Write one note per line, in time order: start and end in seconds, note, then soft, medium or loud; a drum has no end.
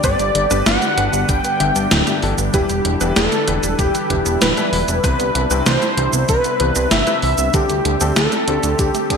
0.00 0.15 G1 loud
0.00 0.14 G2 medium
0.00 5.00 D3 medium
0.00 0.11 D3 medium
0.00 0.14 B3 medium
0.00 0.14 D4 medium
0.00 2.50 G4 loud
0.00 0.14 G4 medium
0.00 0.14 B4 loud
0.00 0.62 D5 loud
0.00 kick loud
0.00 closed hi-hat medium
0.00 cabasa soft
0.04 7.50 G3 medium
0.04 7.50 D4 medium
0.04 0.63 D5 loud
0.19 0.31 G1 medium
0.19 0.31 B3 loud
0.19 closed hi-hat soft
0.19 cabasa soft
0.35 0.47 G1 loud
0.35 0.46 D3 loud
0.35 closed hi-hat medium
0.51 0.62 G1 medium
0.51 0.61 G2 loud
0.51 0.61 B3 medium
0.51 0.61 D4 medium
0.51 0.62 D4 loud
0.51 0.61 G4 medium
0.51 0.61 B4 loud
0.51 closed hi-hat soft
0.51 cabasa medium
0.66 0.78 G1 loud
0.66 0.73 D3 loud
0.66 1.25 F#5 loud
0.66 1.30 F#5 loud
0.66 snare loud
0.66 closed hi-hat medium
0.66 cabasa soft
0.82 0.93 G4 loud
0.82 closed hi-hat soft
0.82 cabasa soft
0.97 1.09 G1 medium
0.97 1.56 G2 medium
0.97 1.09 D3 medium
0.97 1.56 B3 medium
0.97 1.56 D4 medium
0.97 1.56 G4 medium
0.97 1.56 B4 medium
0.97 closed hi-hat medium
1.13 1.25 G1 medium
1.13 1.25 B3 medium
1.13 closed hi-hat soft
1.13 cabasa medium
1.29 1.40 G1 loud
1.29 1.36 D3 medium
1.29 2.22 G5 loud
1.29 2.19 G5 loud
1.29 kick loud
1.29 closed hi-hat medium
1.29 cabasa soft
1.44 1.56 B3 loud
1.44 closed hi-hat soft
1.44 cabasa soft
1.60 1.71 G1 medium
1.60 2.03 G2 medium
1.60 1.72 D3 loud
1.60 2.03 B3 medium
1.60 2.03 D4 medium
1.60 2.03 G4 medium
1.60 2.03 E5 medium
1.60 closed hi-hat medium
1.76 1.87 G1 medium
1.76 1.87 D4 loud
1.76 closed hi-hat soft
1.76 cabasa medium
1.91 2.03 D1 loud
1.91 1.98 D3 loud
1.91 snare loud
1.91 closed hi-hat medium
1.91 cabasa soft
2.07 2.19 G2 medium
2.07 2.19 B3 medium
2.07 2.19 D4 medium
2.07 2.18 G4 loud
2.07 2.19 G4 medium
2.07 2.19 E5 medium
2.07 closed hi-hat soft
2.07 cabasa soft
2.22 2.34 G1 medium
2.22 2.34 D3 medium
2.22 2.32 E3 loud
2.22 2.32 B3 medium
2.22 2.32 D4 medium
2.22 2.32 G4 medium
2.22 2.33 A4 loud
2.22 open hi-hat medium
2.38 2.50 G1 medium
2.38 2.50 B3 medium
2.38 closed hi-hat soft
2.38 cabasa medium
2.54 2.65 E1 loud
2.54 2.61 D3 medium
2.54 2.64 E3 medium
2.54 2.64 D4 medium
2.54 7.50 E4 medium
2.54 2.64 E4 medium
2.54 3.12 G4 medium
2.54 2.64 G4 medium
2.54 3.13 G4 loud
2.54 2.64 B4 loud
2.54 kick loud
2.54 closed hi-hat medium
2.54 cabasa medium
2.69 2.81 E1 medium
2.69 2.81 G3 loud
2.69 closed hi-hat soft
2.69 cabasa soft
2.85 2.96 E1 medium
2.85 2.97 D3 loud
2.85 closed hi-hat medium
3.01 3.12 E1 medium
3.01 3.11 E3 loud
3.01 3.12 B3 loud
3.01 3.11 D4 medium
3.01 3.11 E4 medium
3.01 3.11 G4 medium
3.01 3.11 B4 loud
3.01 closed hi-hat soft
3.01 cabasa medium
3.16 3.28 E1 loud
3.16 3.23 D3 loud
3.16 3.75 A4 loud
3.16 snare loud
3.16 closed hi-hat medium
3.16 cabasa medium
3.32 3.43 D4 loud
3.32 closed hi-hat soft
3.32 cabasa soft
3.48 3.59 E1 loud
3.48 3.59 D3 medium
3.48 4.06 E3 medium
3.48 4.06 D4 medium
3.48 4.06 E4 medium
3.48 4.06 G4 medium
3.48 4.06 B4 medium
3.48 closed hi-hat medium
3.63 3.75 E1 medium
3.63 3.75 G3 medium
3.63 closed hi-hat soft
3.63 cabasa medium
3.79 3.90 E1 loud
3.79 3.86 D3 medium
3.79 4.37 G4 loud
3.79 4.38 G4 medium
3.79 kick loud
3.79 closed hi-hat medium
3.79 cabasa medium
3.95 4.06 G3 loud
3.95 closed hi-hat soft
3.95 cabasa soft
4.10 4.21 E1 medium
4.10 4.22 D3 loud
4.10 4.53 E3 medium
4.10 4.53 D4 medium
4.10 4.53 E4 medium
4.10 4.53 G4 medium
4.10 4.53 B4 medium
4.10 kick medium
4.10 closed hi-hat medium
4.26 4.37 E1 medium
4.26 4.37 B3 loud
4.26 closed hi-hat soft
4.26 cabasa medium
4.41 4.53 D1 loud
4.41 4.48 D3 loud
4.41 5.00 B4 loud
4.41 snare loud
4.41 closed hi-hat medium
4.41 cabasa soft
4.57 4.67 E3 medium
4.57 4.68 D4 loud
4.57 4.67 D4 medium
4.57 4.67 E4 medium
4.57 4.67 G4 medium
4.57 4.67 B4 medium
4.57 closed hi-hat soft
4.57 cabasa soft
4.72 4.84 E1 loud
4.72 4.84 D3 medium
4.72 open hi-hat medium
4.88 5.00 E1 medium
4.88 5.00 G3 medium
4.88 closed hi-hat soft
4.88 cabasa medium
5.04 5.15 C2 loud
5.04 5.14 C3 medium
5.04 7.51 C3 medium
5.04 5.11 E3 medium
5.04 5.14 C4 medium
5.04 5.14 E4 medium
5.04 5.14 G4 medium
5.04 5.14 B4 loud
5.04 5.62 B4 loud
5.04 5.63 B4 loud
5.04 kick loud
5.04 closed hi-hat medium
5.04 cabasa medium
5.19 5.31 C2 medium
5.19 5.31 B3 loud
5.19 closed hi-hat soft
5.19 cabasa soft
5.35 5.46 C2 loud
5.35 5.47 E3 loud
5.35 closed hi-hat medium
5.51 5.62 C2 medium
5.51 5.61 C3 loud
5.51 5.61 C4 loud
5.51 5.62 C4 loud
5.51 5.61 E4 loud
5.51 5.61 G4 medium
5.51 5.61 B4 loud
5.51 closed hi-hat soft
5.51 cabasa medium
5.66 5.78 C2 loud
5.66 5.73 E3 loud
5.66 6.25 C5 loud
5.66 snare loud
5.66 closed hi-hat medium
5.66 cabasa medium
5.82 5.93 E4 loud
5.82 closed hi-hat soft
5.82 cabasa soft
5.97 6.09 C2 loud
5.97 6.56 C3 medium
5.97 6.09 E3 medium
5.97 6.56 C4 medium
5.97 6.56 E4 medium
5.97 6.56 G4 medium
5.97 6.56 C5 medium
5.97 closed hi-hat medium
6.13 6.25 C2 medium
6.13 6.25 B3 medium
6.13 closed hi-hat soft
6.13 cabasa medium
6.29 6.40 C2 loud
6.29 6.36 E3 medium
6.29 6.88 B4 loud
6.29 6.93 B4 loud
6.29 kick loud
6.29 closed hi-hat medium
6.29 cabasa medium
6.44 6.56 B3 loud
6.44 closed hi-hat soft
6.44 cabasa soft
6.60 6.71 C2 medium
6.60 7.03 C3 medium
6.60 6.72 E3 loud
6.60 7.03 C4 medium
6.60 7.03 E4 medium
6.60 7.03 G4 medium
6.60 7.03 B4 medium
6.60 closed hi-hat medium
6.76 6.87 C2 medium
6.76 6.87 C4 loud
6.76 closed hi-hat soft
6.76 cabasa medium
6.91 7.03 G1 loud
6.91 6.98 E3 loud
6.91 7.50 E5 loud
6.91 7.56 E5 loud
6.91 snare loud
6.91 closed hi-hat medium
6.91 cabasa medium
7.07 7.17 C3 medium
7.07 7.17 C4 medium
7.07 7.17 E4 medium
7.07 7.19 E4 loud
7.07 7.17 G4 medium
7.07 7.17 B4 medium
7.07 closed hi-hat soft
7.07 cabasa soft
7.22 7.34 C2 loud
7.22 7.34 E3 medium
7.22 open hi-hat medium
7.38 7.50 C2 medium
7.38 7.50 B3 medium
7.38 closed hi-hat soft
7.38 cabasa medium
7.54 7.65 D2 loud
7.54 9.17 D3 medium
7.54 7.61 D3 medium
7.54 7.64 D3 medium
7.54 9.17 A3 medium
7.54 9.17 C4 medium
7.54 7.64 C4 medium
7.54 7.64 D4 medium
7.54 8.12 G4 loud
7.54 9.17 G4 medium
7.54 7.64 G4 medium
7.54 8.16 G4 loud
7.54 7.64 A4 loud
7.54 kick loud
7.54 closed hi-hat medium
7.54 cabasa medium
7.70 7.81 D2 medium
7.70 7.81 A3 loud
7.70 closed hi-hat soft
7.70 cabasa soft
7.85 7.97 D2 medium
7.85 7.97 D3 loud
7.85 closed hi-hat medium
8.01 8.12 D2 medium
8.01 8.11 D3 loud
8.01 8.12 C4 loud
8.01 8.11 C4 medium
8.01 8.11 D4 medium
8.01 8.11 G4 medium
8.01 8.11 A4 loud
8.01 closed hi-hat soft
8.01 cabasa medium
8.16 8.28 D2 loud
8.16 8.23 D3 loud
8.16 8.75 A4 loud
8.16 8.81 A4 loud
8.16 snare loud
8.16 closed hi-hat medium
8.16 cabasa medium
8.32 8.43 D4 loud
8.32 closed hi-hat soft
8.32 cabasa soft
8.48 8.59 D2 medium
8.48 8.59 D3 medium
8.48 9.07 D3 medium
8.48 9.07 C4 medium
8.48 9.07 D4 medium
8.48 9.07 G4 medium
8.48 9.07 A4 loud
8.48 closed hi-hat medium
8.63 8.75 D2 medium
8.63 8.75 A3 medium
8.63 closed hi-hat soft
8.63 cabasa medium
8.79 8.90 D2 loud
8.79 8.86 D3 medium
8.79 9.08 G4 loud
8.79 9.10 G4 loud
8.79 kick loud
8.79 closed hi-hat medium
8.79 cabasa medium
8.95 9.06 A3 loud
8.95 closed hi-hat soft
8.95 cabasa soft
9.10 9.17 D2 medium
9.10 9.17 D3 loud
9.10 9.17 D3 medium
9.10 9.17 C4 medium
9.10 9.17 D4 medium
9.10 9.17 G4 medium
9.10 9.17 A4 medium
9.10 9.17 A4 loud
9.10 9.17 A4 medium
9.10 kick medium
9.10 closed hi-hat medium